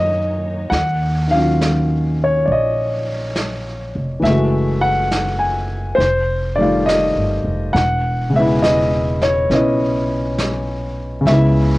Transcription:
0.00 0.68 F#2 medium
0.00 0.67 D#3 medium
0.00 0.72 D#3 medium
0.00 0.72 F#3 soft
0.00 0.71 G#3 soft
0.00 0.67 A#3 medium
0.00 0.72 C#4 medium
0.00 0.67 D#4 medium
0.00 0.72 D#4 soft
0.00 0.72 F#4 soft
0.00 0.67 C#5 medium
0.00 0.68 D#5 medium
0.00 0.70 F#5 medium
0.70 2.44 D#2 medium
0.70 1.27 F#5 medium
0.70 brush sweep soft
0.70 snare soft
1.28 4.22 D#3 soft
1.28 2.22 F5 medium
1.32 4.24 F#3 soft
1.32 4.26 C#4 soft
1.38 4.27 F4 soft
1.61 snare soft
1.61 hi-hat pedal soft
2.24 2.46 C#5 medium
2.45 3.92 A#1 medium
2.45 2.49 D5 medium
2.50 3.94 D#5 medium
2.50 brush sweep soft
3.36 snare soft
3.36 hi-hat pedal medium
3.95 4.22 F1 medium
4.20 5.94 F#1 medium
4.20 5.97 E3 soft
4.20 5.98 G#3 soft
4.20 4.84 E5 medium
4.25 6.00 A3 soft
4.25 brush sweep soft
4.25 snare soft
4.30 6.02 F#4 medium
4.81 5.42 F#5 medium
5.12 snare soft
5.12 hi-hat pedal soft
5.39 6.00 G#5 medium
5.95 7.11 F1 medium
5.95 6.58 C5 medium
6.00 brush sweep soft
6.00 snare soft
6.56 7.74 D#3 medium
6.56 7.74 G3 soft
6.56 6.86 D5 medium
6.60 7.75 A3 soft
6.60 7.76 F4 medium
6.86 7.77 D#5 medium
6.86 snare soft
6.86 hi-hat pedal soft
7.16 7.43 G1 medium
7.44 7.72 F1 medium
7.73 9.46 E1 medium
7.73 8.29 F#5 medium
7.73 brush sweep soft
7.73 snare soft
8.30 11.19 C#3 soft
8.30 11.23 G#3 soft
8.36 9.49 B3 soft
8.36 8.64 E5 medium
8.40 9.51 E4 medium
8.63 9.18 D#5 medium
8.63 snare soft
8.63 hi-hat pedal medium
9.22 9.51 C#5 medium
9.22 snare soft
9.50 11.21 B1 medium
9.50 11.26 B3 soft
9.50 11.26 C#4 soft
9.50 11.27 E4 soft
9.50 10.95 D#5 medium
9.50 brush sweep soft
9.50 snare soft
10.38 snare soft
10.38 hi-hat pedal medium
11.21 11.78 C#3 medium
11.21 11.78 G#3 soft
11.26 11.78 C#2 medium
11.26 11.78 B3 soft
11.26 11.78 E5 medium
11.26 brush sweep soft
11.26 snare soft
11.32 11.78 E4 medium

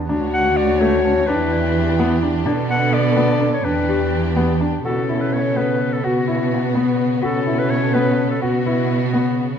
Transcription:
0.00 0.11 E2 medium
0.09 1.29 D2 medium
0.09 1.27 D3 medium
0.09 0.40 D4 medium
0.09 1.27 F#4 medium
0.09 1.24 F#4 loud
0.09 1.27 C#5 medium
0.33 0.58 F#5 loud
0.57 0.81 D5 medium
0.79 0.96 A3 medium
0.79 1.28 C#5 medium
1.04 1.20 C#4 medium
1.04 1.48 A5 medium
1.27 2.48 E2 medium
1.27 2.44 E3 medium
1.27 2.45 D4 medium
1.27 1.59 D4 medium
1.27 2.42 E4 loud
1.27 2.45 G4 medium
1.27 2.22 B4 medium
1.52 2.45 D5 medium
1.99 2.14 B3 medium
2.23 2.38 D4 medium
2.46 3.65 B2 medium
2.46 3.63 D3 medium
2.46 3.63 B3 medium
2.46 2.76 D4 medium
2.46 3.60 D4 medium
2.46 3.63 A4 medium
2.46 3.53 D5 medium
2.70 2.95 F#5 medium
2.92 3.83 A4 medium
2.92 3.52 D5 medium
3.17 3.32 B3 medium
3.40 3.56 D4 medium
3.40 3.84 B4 medium
3.53 3.66 C#5 medium
3.63 4.82 E2 medium
3.63 4.83 E3 medium
3.63 4.55 D4 medium
3.63 4.83 D4 medium
3.63 3.95 D4 medium
3.63 4.83 G4 medium
3.63 4.36 B4 medium
3.89 4.97 G4 medium
4.36 4.52 B3 medium
4.61 4.76 D4 medium
4.84 6.04 B2 medium
4.84 8.38 C#3 medium
4.84 9.59 B3 medium
4.84 6.05 C#4 loud
4.84 5.93 E4 soft
4.84 5.00 F#4 medium
4.84 5.22 A4 medium
4.84 6.03 A4 medium
5.09 5.39 E4 medium
5.21 5.35 B4 medium
5.33 5.58 C#5 medium
5.56 5.87 B3 medium
5.56 5.94 B4 medium
5.81 6.25 B4 soft
5.93 6.06 A4 medium
6.03 7.23 B2 medium
6.03 7.24 B3 medium
6.03 6.19 F#4 medium
6.03 6.99 F#4 medium
6.03 7.22 F#4 medium
6.28 6.58 E4 medium
6.75 7.05 B3 medium
7.22 8.41 B2 medium
7.22 8.42 C#4 loud
7.22 8.30 F#4 medium
7.22 7.38 F#4 medium
7.22 8.40 A4 medium
7.22 7.60 A4 medium
7.46 7.77 E4 medium
7.58 7.72 B4 medium
7.70 7.95 C#5 medium
7.94 8.25 B3 medium
7.94 8.30 B4 medium
8.30 8.41 A4 medium
8.41 9.59 B2 medium
8.41 9.59 C#3 medium
8.41 9.37 B3 medium
8.41 8.57 F#4 medium
8.41 9.59 F#4 medium
8.41 9.34 F#4 medium
8.66 8.97 E4 medium
8.66 9.59 B4 medium
9.13 9.44 B3 medium

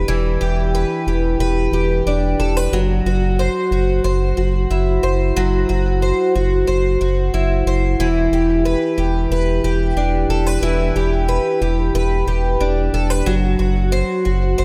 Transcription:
0.00 2.06 D4 medium
0.00 0.40 G4 medium
0.00 0.74 B4 medium
0.08 0.37 E1 loud
0.08 2.73 E3 medium
0.41 0.85 E1 loud
0.41 1.07 G4 soft
0.75 1.39 B4 medium
1.07 1.36 E1 medium
1.07 1.72 G4 soft
1.39 1.69 E1 loud
1.39 2.39 B4 medium
1.72 2.02 E1 medium
1.72 2.79 G4 medium
2.06 2.35 E1 medium
2.06 2.79 D4 medium
2.39 2.68 E1 medium
2.39 2.57 A4 medium
2.57 2.79 B4 medium
2.73 3.01 F#1 loud
2.73 5.35 F#3 medium
3.06 3.49 F#1 medium
3.06 3.71 F#4 medium
3.39 4.03 C5 medium
3.71 4.00 F#1 medium
3.71 4.36 F#4 soft
4.04 4.33 F#1 loud
4.04 5.02 C5 medium
4.37 4.66 F#1 medium
4.37 5.68 F#4 medium
4.71 4.99 F#1 medium
4.71 7.33 E4 medium
5.03 5.32 F#1 medium
5.03 6.01 C5 medium
5.36 5.65 F#1 loud
5.36 7.99 F#3 medium
5.69 6.13 F#1 medium
5.69 6.34 F#4 medium
6.02 6.66 C5 medium
6.35 6.64 F#1 loud
6.35 7.00 F#4 medium
6.67 6.97 F#1 loud
6.67 7.66 C5 medium
7.01 7.30 F#1 medium
7.01 8.06 F#4 soft
7.34 7.63 F#1 medium
7.34 9.96 E4 medium
7.66 7.95 F#1 medium
7.66 8.06 C5 medium
8.00 8.28 E1 loud
8.00 10.62 E3 medium
8.32 8.75 E1 medium
8.32 8.97 G4 medium
8.65 9.30 B4 medium
8.98 9.27 E1 medium
8.98 9.63 G4 soft
9.31 9.60 E1 loud
9.31 10.30 B4 medium
9.64 9.93 E1 medium
9.64 10.95 G4 soft
9.96 10.26 E1 medium
9.96 12.59 D4 medium
10.29 10.58 E1 medium
10.29 10.47 A4 medium
10.47 11.27 B4 soft
10.62 10.92 E1 loud
10.62 13.26 E3 medium
10.96 11.39 E1 loud
10.96 11.60 G4 medium
11.29 11.94 B4 medium
11.62 11.91 E1 medium
11.62 12.26 G4 medium
11.95 12.24 E1 loud
11.95 12.93 B4 medium
12.27 12.57 E1 medium
12.27 13.33 G4 medium
12.60 12.90 E1 medium
12.60 13.33 D4 medium
12.94 13.23 E1 loud
12.94 13.10 A4 medium
13.10 13.33 B4 medium
13.26 13.56 F#1 loud
13.26 14.65 F#3 medium
13.59 14.03 F#1 medium
13.59 14.25 F#4 soft
13.92 14.57 C5 medium
14.25 14.55 F#1 medium
14.25 14.65 F#4 medium
14.58 14.65 F#1 loud
14.58 14.65 C5 medium

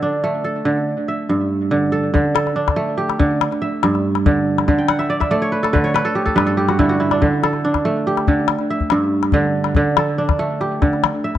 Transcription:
0.00 0.64 D3 medium
0.00 1.70 D4 medium
0.00 0.44 A4 medium
0.24 2.23 A3 medium
0.44 1.76 A4 medium
0.65 0.92 D3 medium
1.08 2.12 E5 medium
1.29 2.19 G2 medium
1.71 2.12 D3 medium
1.92 2.34 A4 medium
2.14 3.18 D3 medium
2.14 calabash thump medium
2.14 calabash click soft
2.35 3.66 A4 medium
2.35 calabash click medium
2.47 calabash click soft
2.56 4.24 D4 medium
2.68 calabash thump soft
2.68 calabash click soft
2.76 4.76 A3 medium
2.98 4.39 G4 medium
3.10 calabash click soft
3.19 3.46 D3 medium
3.19 calabash thump medium
3.41 calabash click medium
3.52 calabash click soft
3.62 4.65 E5 medium
3.83 4.73 G2 medium
3.83 calabash click medium
3.95 calabash click soft
4.15 calabash click soft
4.26 4.67 D3 medium
4.26 calabash thump medium
4.58 calabash click soft
4.68 5.72 D3 medium
4.68 calabash thump medium
4.68 calabash click soft
4.78 5.71 G5 medium
4.88 5.85 F#5 medium
4.88 calabash click medium
4.99 5.20 E5 medium
4.99 calabash click soft
5.10 5.31 D5 medium
5.20 6.24 E5 medium
5.20 calabash thump soft
5.20 calabash click soft
5.31 7.31 A3 medium
5.31 5.90 D5 medium
5.42 5.79 C#5 medium
5.52 5.73 B4 medium
5.63 6.04 A4 medium
5.63 calabash click soft
5.73 6.00 D3 medium
5.73 5.94 B4 medium
5.73 calabash thump medium
5.84 6.85 C#5 medium
5.94 6.35 B4 medium
5.94 calabash click medium
6.05 6.25 A4 medium
6.15 6.57 G4 medium
6.26 6.46 A4 medium
6.26 calabash thump soft
6.36 7.27 G2 medium
6.36 7.59 B4 medium
6.36 calabash click medium
6.47 7.43 A4 medium
6.47 calabash click soft
6.57 6.95 G4 medium
6.69 6.89 F#4 medium
6.69 calabash click soft
6.79 7.21 D3 medium
6.79 6.99 E4 medium
6.79 calabash thump medium
6.89 8.13 F#4 medium
7.00 8.57 E4 medium
7.11 7.64 D4 medium
7.11 calabash click soft
7.22 8.27 D3 medium
7.22 calabash thump medium
7.22 calabash click soft
7.43 8.75 A4 medium
7.43 calabash click medium
7.53 calabash click soft
7.65 9.33 D4 medium
7.74 calabash thump soft
7.74 calabash click soft
7.85 9.85 A3 medium
8.07 9.48 G4 medium
8.17 calabash click soft
8.28 8.54 D3 medium
8.28 calabash thump medium
8.48 calabash click medium
8.59 calabash click soft
8.70 9.74 E5 medium
8.80 calabash thump soft
8.90 9.81 G2 medium
8.90 calabash click medium
9.23 calabash click soft
9.32 9.75 D3 medium
9.32 calabash thump medium
9.64 calabash click soft
9.75 10.81 D3 medium
9.75 calabash thump medium
9.97 11.29 A4 medium
9.97 calabash click medium
10.18 11.38 D4 medium
10.29 calabash thump medium
10.29 calabash click medium
10.39 11.38 A3 medium
10.61 11.38 G4 medium
10.61 calabash click soft
10.82 11.09 D3 medium
10.82 calabash thump medium
10.82 calabash click soft
10.93 calabash click soft
11.04 calabash click medium
11.24 11.38 E5 medium

